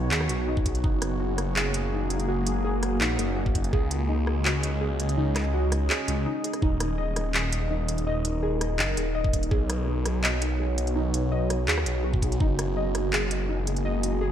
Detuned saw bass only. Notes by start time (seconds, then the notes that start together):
Already playing: B1
0.11 D#2
0.29 B1
0.75 B1
0.84 F#1
2.29 F#1
3.01 A#1
3.19 F#1
3.73 C#2
5.18 C#2
6.08 C#2
6.62 D#1
8.07 D#1
8.79 F#1
8.97 D#1
9.51 B1
10.96 B1
11.68 D#2
11.86 B1
12.31 B1
12.40 F#1
13.85 F#1